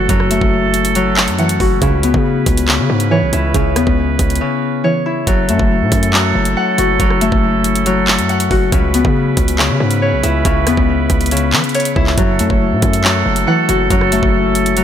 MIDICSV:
0, 0, Header, 1, 6, 480
1, 0, Start_track
1, 0, Tempo, 431655
1, 101, Time_signature, 4, 2, 24, 8
1, 16500, End_track
2, 0, Start_track
2, 0, Title_t, "Woodwind section"
2, 0, Program_c, 0, 71
2, 0, Note_on_c, 0, 54, 84
2, 0, Note_on_c, 0, 61, 79
2, 0, Note_on_c, 0, 64, 78
2, 0, Note_on_c, 0, 69, 94
2, 1984, Note_off_c, 0, 54, 0
2, 1984, Note_off_c, 0, 69, 0
2, 2022, Note_on_c, 0, 49, 89
2, 2022, Note_on_c, 0, 71, 99
2, 5671, Note_off_c, 0, 49, 0
2, 5671, Note_off_c, 0, 61, 0
2, 5671, Note_off_c, 0, 64, 0
2, 5671, Note_off_c, 0, 71, 0
2, 5860, Note_on_c, 0, 61, 80
2, 5861, Note_on_c, 0, 54, 90
2, 5861, Note_on_c, 0, 69, 94
2, 5862, Note_on_c, 0, 64, 82
2, 9663, Note_off_c, 0, 54, 0
2, 9663, Note_off_c, 0, 64, 0
2, 9663, Note_off_c, 0, 69, 0
2, 9701, Note_on_c, 0, 49, 87
2, 9701, Note_on_c, 0, 64, 83
2, 9701, Note_on_c, 0, 71, 97
2, 13353, Note_off_c, 0, 49, 0
2, 13353, Note_off_c, 0, 61, 0
2, 13353, Note_off_c, 0, 64, 0
2, 13353, Note_off_c, 0, 71, 0
2, 13542, Note_on_c, 0, 54, 86
2, 13542, Note_on_c, 0, 61, 81
2, 13542, Note_on_c, 0, 64, 81
2, 13543, Note_on_c, 0, 69, 100
2, 16500, Note_off_c, 0, 54, 0
2, 16500, Note_off_c, 0, 61, 0
2, 16500, Note_off_c, 0, 64, 0
2, 16500, Note_off_c, 0, 69, 0
2, 16500, End_track
3, 0, Start_track
3, 0, Title_t, "Harp"
3, 0, Program_c, 1, 46
3, 0, Note_on_c, 1, 57, 76
3, 0, Note_on_c, 1, 64, 84
3, 0, Note_on_c, 1, 66, 87
3, 0, Note_on_c, 1, 78, 100
3, 106, Note_on_c, 1, 54, 96
3, 334, Note_off_c, 1, 57, 0
3, 338, Note_on_c, 1, 57, 85
3, 847, Note_off_c, 1, 64, 0
3, 1049, Note_off_c, 1, 54, 0
3, 1062, Note_on_c, 1, 54, 100
3, 1411, Note_off_c, 1, 78, 0
3, 1543, Note_on_c, 1, 78, 93
3, 1781, Note_off_c, 1, 66, 0
3, 1786, Note_on_c, 1, 66, 88
3, 2021, Note_on_c, 1, 49, 93
3, 2077, Note_off_c, 1, 54, 0
3, 2263, Note_on_c, 1, 59, 81
3, 2964, Note_off_c, 1, 49, 0
3, 2978, Note_on_c, 1, 49, 90
3, 3330, Note_off_c, 1, 78, 0
3, 3461, Note_on_c, 1, 73, 97
3, 3700, Note_on_c, 1, 64, 83
3, 3931, Note_off_c, 1, 49, 0
3, 3944, Note_on_c, 1, 49, 96
3, 4040, Note_off_c, 1, 57, 0
3, 4178, Note_off_c, 1, 59, 0
3, 4183, Note_on_c, 1, 59, 88
3, 4495, Note_off_c, 1, 66, 0
3, 4889, Note_off_c, 1, 49, 0
3, 4903, Note_on_c, 1, 49, 91
3, 5378, Note_off_c, 1, 73, 0
3, 5383, Note_on_c, 1, 73, 89
3, 5619, Note_off_c, 1, 64, 0
3, 5624, Note_on_c, 1, 64, 84
3, 5862, Note_on_c, 1, 54, 94
3, 5917, Note_off_c, 1, 49, 0
3, 6108, Note_on_c, 1, 57, 78
3, 6806, Note_off_c, 1, 54, 0
3, 6819, Note_on_c, 1, 54, 93
3, 7303, Note_on_c, 1, 78, 97
3, 7508, Note_off_c, 1, 73, 0
3, 7545, Note_on_c, 1, 66, 90
3, 7636, Note_off_c, 1, 59, 0
3, 7774, Note_off_c, 1, 54, 0
3, 7787, Note_on_c, 1, 54, 96
3, 8014, Note_off_c, 1, 57, 0
3, 8019, Note_on_c, 1, 57, 87
3, 8528, Note_off_c, 1, 64, 0
3, 8728, Note_off_c, 1, 54, 0
3, 8742, Note_on_c, 1, 54, 98
3, 9091, Note_off_c, 1, 78, 0
3, 9222, Note_on_c, 1, 78, 97
3, 9461, Note_off_c, 1, 66, 0
3, 9466, Note_on_c, 1, 66, 92
3, 9700, Note_on_c, 1, 49, 93
3, 9757, Note_off_c, 1, 54, 0
3, 9942, Note_on_c, 1, 59, 80
3, 10644, Note_off_c, 1, 49, 0
3, 10658, Note_on_c, 1, 49, 93
3, 11010, Note_off_c, 1, 78, 0
3, 11141, Note_on_c, 1, 73, 95
3, 11381, Note_on_c, 1, 64, 85
3, 11612, Note_off_c, 1, 49, 0
3, 11625, Note_on_c, 1, 49, 101
3, 11720, Note_off_c, 1, 57, 0
3, 11859, Note_off_c, 1, 59, 0
3, 11863, Note_on_c, 1, 59, 89
3, 12175, Note_off_c, 1, 66, 0
3, 12570, Note_off_c, 1, 49, 0
3, 12583, Note_on_c, 1, 49, 91
3, 13058, Note_off_c, 1, 73, 0
3, 13063, Note_on_c, 1, 73, 89
3, 13298, Note_off_c, 1, 64, 0
3, 13302, Note_on_c, 1, 64, 89
3, 13541, Note_on_c, 1, 54, 94
3, 13597, Note_off_c, 1, 49, 0
3, 13787, Note_on_c, 1, 57, 76
3, 14486, Note_off_c, 1, 54, 0
3, 14499, Note_on_c, 1, 54, 91
3, 14983, Note_on_c, 1, 78, 100
3, 15189, Note_off_c, 1, 73, 0
3, 15225, Note_on_c, 1, 66, 89
3, 15317, Note_off_c, 1, 59, 0
3, 15454, Note_off_c, 1, 54, 0
3, 15468, Note_on_c, 1, 54, 97
3, 15695, Note_off_c, 1, 57, 0
3, 15699, Note_on_c, 1, 57, 83
3, 16206, Note_off_c, 1, 64, 0
3, 16410, Note_off_c, 1, 54, 0
3, 16423, Note_on_c, 1, 54, 97
3, 16500, Note_off_c, 1, 54, 0
3, 16500, Note_off_c, 1, 57, 0
3, 16500, Note_off_c, 1, 66, 0
3, 16500, Note_off_c, 1, 78, 0
3, 16500, End_track
4, 0, Start_track
4, 0, Title_t, "Synth pluck"
4, 0, Program_c, 2, 84
4, 0, Note_on_c, 2, 52, 98
4, 101, Note_on_c, 2, 42, 95
4, 821, Note_off_c, 2, 52, 0
4, 1301, Note_off_c, 2, 42, 0
4, 1541, Note_on_c, 2, 52, 83
4, 2020, Note_on_c, 2, 49, 100
4, 2021, Note_off_c, 2, 52, 0
4, 3221, Note_off_c, 2, 49, 0
4, 3461, Note_on_c, 2, 52, 91
4, 3941, Note_on_c, 2, 49, 97
4, 4661, Note_off_c, 2, 52, 0
4, 5141, Note_off_c, 2, 49, 0
4, 5381, Note_on_c, 2, 52, 91
4, 5861, Note_off_c, 2, 52, 0
4, 13541, Note_on_c, 2, 42, 98
4, 14741, Note_off_c, 2, 42, 0
4, 14982, Note_on_c, 2, 52, 96
4, 15463, Note_on_c, 2, 42, 96
4, 16181, Note_off_c, 2, 52, 0
4, 16500, Note_off_c, 2, 42, 0
4, 16500, End_track
5, 0, Start_track
5, 0, Title_t, "808-style bass"
5, 0, Program_c, 3, 38
5, 101, Note_on_c, 3, 30, 112
5, 447, Note_off_c, 3, 30, 0
5, 461, Note_on_c, 3, 30, 105
5, 1421, Note_on_c, 3, 42, 103
5, 1438, Note_off_c, 3, 30, 0
5, 1763, Note_off_c, 3, 42, 0
5, 1781, Note_on_c, 3, 30, 105
5, 2011, Note_off_c, 3, 30, 0
5, 2021, Note_on_c, 3, 37, 118
5, 2367, Note_off_c, 3, 37, 0
5, 2380, Note_on_c, 3, 49, 103
5, 2726, Note_off_c, 3, 49, 0
5, 2741, Note_on_c, 3, 37, 110
5, 3100, Note_on_c, 3, 49, 104
5, 3117, Note_off_c, 3, 37, 0
5, 3215, Note_off_c, 3, 49, 0
5, 3221, Note_on_c, 3, 44, 108
5, 3582, Note_on_c, 3, 35, 97
5, 3598, Note_off_c, 3, 44, 0
5, 3695, Note_off_c, 3, 35, 0
5, 3702, Note_on_c, 3, 37, 103
5, 3932, Note_off_c, 3, 37, 0
5, 3941, Note_on_c, 3, 37, 109
5, 4181, Note_on_c, 3, 40, 102
5, 4197, Note_off_c, 3, 37, 0
5, 4295, Note_off_c, 3, 40, 0
5, 4302, Note_on_c, 3, 37, 100
5, 4647, Note_off_c, 3, 37, 0
5, 4661, Note_on_c, 3, 37, 110
5, 4901, Note_off_c, 3, 37, 0
5, 5861, Note_on_c, 3, 30, 111
5, 6101, Note_on_c, 3, 42, 103
5, 6117, Note_off_c, 3, 30, 0
5, 6215, Note_off_c, 3, 42, 0
5, 6221, Note_on_c, 3, 30, 112
5, 6461, Note_on_c, 3, 45, 101
5, 6478, Note_off_c, 3, 30, 0
5, 6575, Note_off_c, 3, 45, 0
5, 6581, Note_on_c, 3, 42, 106
5, 7042, Note_off_c, 3, 42, 0
5, 7062, Note_on_c, 3, 30, 105
5, 7292, Note_off_c, 3, 30, 0
5, 7542, Note_on_c, 3, 30, 105
5, 7772, Note_off_c, 3, 30, 0
5, 7781, Note_on_c, 3, 30, 120
5, 8127, Note_off_c, 3, 30, 0
5, 8140, Note_on_c, 3, 30, 105
5, 9101, Note_on_c, 3, 42, 102
5, 9118, Note_off_c, 3, 30, 0
5, 9443, Note_off_c, 3, 42, 0
5, 9461, Note_on_c, 3, 30, 106
5, 9692, Note_off_c, 3, 30, 0
5, 9701, Note_on_c, 3, 37, 117
5, 10047, Note_off_c, 3, 37, 0
5, 10061, Note_on_c, 3, 49, 99
5, 10407, Note_off_c, 3, 49, 0
5, 10420, Note_on_c, 3, 37, 107
5, 10781, Note_on_c, 3, 49, 109
5, 10798, Note_off_c, 3, 37, 0
5, 10895, Note_off_c, 3, 49, 0
5, 10901, Note_on_c, 3, 44, 110
5, 11262, Note_on_c, 3, 35, 96
5, 11278, Note_off_c, 3, 44, 0
5, 11375, Note_off_c, 3, 35, 0
5, 11381, Note_on_c, 3, 37, 108
5, 11612, Note_off_c, 3, 37, 0
5, 11621, Note_on_c, 3, 37, 114
5, 11861, Note_on_c, 3, 40, 103
5, 11878, Note_off_c, 3, 37, 0
5, 11975, Note_off_c, 3, 40, 0
5, 11980, Note_on_c, 3, 37, 103
5, 12327, Note_off_c, 3, 37, 0
5, 12341, Note_on_c, 3, 37, 109
5, 12822, Note_on_c, 3, 52, 97
5, 12839, Note_off_c, 3, 37, 0
5, 12936, Note_off_c, 3, 52, 0
5, 13301, Note_on_c, 3, 37, 105
5, 13532, Note_off_c, 3, 37, 0
5, 13540, Note_on_c, 3, 30, 109
5, 13781, Note_on_c, 3, 42, 105
5, 13798, Note_off_c, 3, 30, 0
5, 13895, Note_off_c, 3, 42, 0
5, 13900, Note_on_c, 3, 30, 108
5, 14140, Note_on_c, 3, 45, 103
5, 14157, Note_off_c, 3, 30, 0
5, 14255, Note_off_c, 3, 45, 0
5, 14261, Note_on_c, 3, 42, 105
5, 14722, Note_off_c, 3, 42, 0
5, 14740, Note_on_c, 3, 30, 106
5, 14971, Note_off_c, 3, 30, 0
5, 15221, Note_on_c, 3, 30, 105
5, 15452, Note_off_c, 3, 30, 0
5, 15462, Note_on_c, 3, 30, 118
5, 15807, Note_off_c, 3, 30, 0
5, 15821, Note_on_c, 3, 30, 109
5, 16500, Note_off_c, 3, 30, 0
5, 16500, End_track
6, 0, Start_track
6, 0, Title_t, "Drums"
6, 101, Note_on_c, 9, 36, 112
6, 101, Note_on_c, 9, 42, 81
6, 212, Note_off_c, 9, 36, 0
6, 213, Note_off_c, 9, 42, 0
6, 222, Note_on_c, 9, 37, 68
6, 333, Note_off_c, 9, 37, 0
6, 341, Note_on_c, 9, 42, 85
6, 453, Note_off_c, 9, 42, 0
6, 461, Note_on_c, 9, 36, 99
6, 572, Note_off_c, 9, 36, 0
6, 820, Note_on_c, 9, 42, 82
6, 931, Note_off_c, 9, 42, 0
6, 942, Note_on_c, 9, 42, 81
6, 1054, Note_off_c, 9, 42, 0
6, 1060, Note_on_c, 9, 42, 76
6, 1171, Note_off_c, 9, 42, 0
6, 1300, Note_on_c, 9, 39, 116
6, 1411, Note_off_c, 9, 39, 0
6, 1420, Note_on_c, 9, 42, 70
6, 1531, Note_off_c, 9, 42, 0
6, 1540, Note_on_c, 9, 42, 41
6, 1651, Note_off_c, 9, 42, 0
6, 1660, Note_on_c, 9, 42, 86
6, 1771, Note_off_c, 9, 42, 0
6, 1780, Note_on_c, 9, 46, 58
6, 1781, Note_on_c, 9, 36, 97
6, 1891, Note_off_c, 9, 46, 0
6, 1892, Note_off_c, 9, 36, 0
6, 2020, Note_on_c, 9, 42, 83
6, 2021, Note_on_c, 9, 36, 117
6, 2131, Note_off_c, 9, 42, 0
6, 2132, Note_off_c, 9, 36, 0
6, 2260, Note_on_c, 9, 42, 88
6, 2371, Note_off_c, 9, 42, 0
6, 2380, Note_on_c, 9, 36, 98
6, 2492, Note_off_c, 9, 36, 0
6, 2739, Note_on_c, 9, 42, 83
6, 2740, Note_on_c, 9, 36, 96
6, 2850, Note_off_c, 9, 42, 0
6, 2852, Note_off_c, 9, 36, 0
6, 2863, Note_on_c, 9, 42, 79
6, 2974, Note_off_c, 9, 42, 0
6, 2981, Note_on_c, 9, 39, 119
6, 3093, Note_off_c, 9, 39, 0
6, 3336, Note_on_c, 9, 42, 72
6, 3447, Note_off_c, 9, 42, 0
6, 3701, Note_on_c, 9, 42, 80
6, 3812, Note_off_c, 9, 42, 0
6, 3941, Note_on_c, 9, 36, 114
6, 3941, Note_on_c, 9, 42, 79
6, 4053, Note_off_c, 9, 36, 0
6, 4053, Note_off_c, 9, 42, 0
6, 4182, Note_on_c, 9, 37, 94
6, 4182, Note_on_c, 9, 42, 84
6, 4293, Note_off_c, 9, 37, 0
6, 4293, Note_off_c, 9, 42, 0
6, 4301, Note_on_c, 9, 36, 96
6, 4413, Note_off_c, 9, 36, 0
6, 4661, Note_on_c, 9, 36, 91
6, 4661, Note_on_c, 9, 42, 85
6, 4772, Note_off_c, 9, 36, 0
6, 4772, Note_off_c, 9, 42, 0
6, 4782, Note_on_c, 9, 42, 48
6, 4843, Note_off_c, 9, 42, 0
6, 4843, Note_on_c, 9, 42, 60
6, 4954, Note_off_c, 9, 42, 0
6, 5861, Note_on_c, 9, 36, 113
6, 5861, Note_on_c, 9, 42, 84
6, 5972, Note_off_c, 9, 42, 0
6, 5973, Note_off_c, 9, 36, 0
6, 6102, Note_on_c, 9, 42, 88
6, 6213, Note_off_c, 9, 42, 0
6, 6221, Note_on_c, 9, 36, 100
6, 6332, Note_off_c, 9, 36, 0
6, 6580, Note_on_c, 9, 42, 85
6, 6581, Note_on_c, 9, 36, 92
6, 6691, Note_off_c, 9, 42, 0
6, 6692, Note_off_c, 9, 36, 0
6, 6703, Note_on_c, 9, 42, 80
6, 6814, Note_off_c, 9, 42, 0
6, 6822, Note_on_c, 9, 39, 119
6, 6933, Note_off_c, 9, 39, 0
6, 7176, Note_on_c, 9, 42, 72
6, 7288, Note_off_c, 9, 42, 0
6, 7542, Note_on_c, 9, 42, 82
6, 7653, Note_off_c, 9, 42, 0
6, 7781, Note_on_c, 9, 36, 112
6, 7781, Note_on_c, 9, 42, 81
6, 7892, Note_off_c, 9, 36, 0
6, 7892, Note_off_c, 9, 42, 0
6, 7901, Note_on_c, 9, 37, 70
6, 8012, Note_off_c, 9, 37, 0
6, 8021, Note_on_c, 9, 42, 85
6, 8132, Note_off_c, 9, 42, 0
6, 8141, Note_on_c, 9, 36, 99
6, 8252, Note_off_c, 9, 36, 0
6, 8500, Note_on_c, 9, 42, 85
6, 8611, Note_off_c, 9, 42, 0
6, 8623, Note_on_c, 9, 42, 81
6, 8735, Note_off_c, 9, 42, 0
6, 8740, Note_on_c, 9, 42, 77
6, 8851, Note_off_c, 9, 42, 0
6, 8981, Note_on_c, 9, 39, 121
6, 9092, Note_off_c, 9, 39, 0
6, 9102, Note_on_c, 9, 42, 66
6, 9213, Note_off_c, 9, 42, 0
6, 9222, Note_on_c, 9, 42, 42
6, 9333, Note_off_c, 9, 42, 0
6, 9341, Note_on_c, 9, 42, 90
6, 9452, Note_off_c, 9, 42, 0
6, 9461, Note_on_c, 9, 36, 98
6, 9461, Note_on_c, 9, 46, 57
6, 9572, Note_off_c, 9, 36, 0
6, 9572, Note_off_c, 9, 46, 0
6, 9701, Note_on_c, 9, 36, 118
6, 9701, Note_on_c, 9, 42, 84
6, 9812, Note_off_c, 9, 36, 0
6, 9812, Note_off_c, 9, 42, 0
6, 9941, Note_on_c, 9, 42, 87
6, 10052, Note_off_c, 9, 42, 0
6, 10061, Note_on_c, 9, 36, 101
6, 10172, Note_off_c, 9, 36, 0
6, 10419, Note_on_c, 9, 42, 82
6, 10420, Note_on_c, 9, 36, 96
6, 10530, Note_off_c, 9, 42, 0
6, 10532, Note_off_c, 9, 36, 0
6, 10542, Note_on_c, 9, 42, 78
6, 10654, Note_off_c, 9, 42, 0
6, 10661, Note_on_c, 9, 39, 119
6, 10772, Note_off_c, 9, 39, 0
6, 11015, Note_on_c, 9, 42, 73
6, 11126, Note_off_c, 9, 42, 0
6, 11381, Note_on_c, 9, 42, 81
6, 11492, Note_off_c, 9, 42, 0
6, 11621, Note_on_c, 9, 36, 115
6, 11621, Note_on_c, 9, 42, 83
6, 11732, Note_off_c, 9, 36, 0
6, 11732, Note_off_c, 9, 42, 0
6, 11861, Note_on_c, 9, 37, 94
6, 11861, Note_on_c, 9, 42, 84
6, 11973, Note_off_c, 9, 37, 0
6, 11973, Note_off_c, 9, 42, 0
6, 11981, Note_on_c, 9, 36, 98
6, 12092, Note_off_c, 9, 36, 0
6, 12340, Note_on_c, 9, 42, 83
6, 12341, Note_on_c, 9, 36, 91
6, 12451, Note_off_c, 9, 42, 0
6, 12452, Note_off_c, 9, 36, 0
6, 12461, Note_on_c, 9, 42, 47
6, 12521, Note_off_c, 9, 42, 0
6, 12521, Note_on_c, 9, 42, 58
6, 12581, Note_off_c, 9, 42, 0
6, 12581, Note_on_c, 9, 42, 75
6, 12641, Note_off_c, 9, 42, 0
6, 12641, Note_on_c, 9, 42, 85
6, 12752, Note_off_c, 9, 42, 0
6, 12820, Note_on_c, 9, 39, 122
6, 12931, Note_off_c, 9, 39, 0
6, 12941, Note_on_c, 9, 42, 42
6, 13001, Note_off_c, 9, 42, 0
6, 13001, Note_on_c, 9, 42, 51
6, 13061, Note_off_c, 9, 42, 0
6, 13061, Note_on_c, 9, 42, 63
6, 13120, Note_off_c, 9, 42, 0
6, 13120, Note_on_c, 9, 42, 72
6, 13181, Note_off_c, 9, 42, 0
6, 13181, Note_on_c, 9, 42, 85
6, 13292, Note_off_c, 9, 42, 0
6, 13301, Note_on_c, 9, 36, 95
6, 13412, Note_off_c, 9, 36, 0
6, 13419, Note_on_c, 9, 39, 69
6, 13531, Note_off_c, 9, 39, 0
6, 13539, Note_on_c, 9, 42, 81
6, 13541, Note_on_c, 9, 36, 118
6, 13651, Note_off_c, 9, 42, 0
6, 13652, Note_off_c, 9, 36, 0
6, 13780, Note_on_c, 9, 42, 84
6, 13891, Note_off_c, 9, 42, 0
6, 13900, Note_on_c, 9, 36, 97
6, 14012, Note_off_c, 9, 36, 0
6, 14259, Note_on_c, 9, 42, 80
6, 14260, Note_on_c, 9, 36, 93
6, 14371, Note_off_c, 9, 42, 0
6, 14372, Note_off_c, 9, 36, 0
6, 14383, Note_on_c, 9, 42, 80
6, 14494, Note_off_c, 9, 42, 0
6, 14502, Note_on_c, 9, 39, 122
6, 14613, Note_off_c, 9, 39, 0
6, 14856, Note_on_c, 9, 42, 73
6, 14967, Note_off_c, 9, 42, 0
6, 15221, Note_on_c, 9, 42, 81
6, 15332, Note_off_c, 9, 42, 0
6, 15462, Note_on_c, 9, 36, 116
6, 15462, Note_on_c, 9, 42, 82
6, 15573, Note_off_c, 9, 36, 0
6, 15573, Note_off_c, 9, 42, 0
6, 15582, Note_on_c, 9, 37, 71
6, 15693, Note_off_c, 9, 37, 0
6, 15702, Note_on_c, 9, 42, 87
6, 15813, Note_off_c, 9, 42, 0
6, 15821, Note_on_c, 9, 36, 100
6, 15932, Note_off_c, 9, 36, 0
6, 16181, Note_on_c, 9, 42, 82
6, 16292, Note_off_c, 9, 42, 0
6, 16303, Note_on_c, 9, 42, 78
6, 16414, Note_off_c, 9, 42, 0
6, 16420, Note_on_c, 9, 42, 77
6, 16500, Note_off_c, 9, 42, 0
6, 16500, End_track
0, 0, End_of_file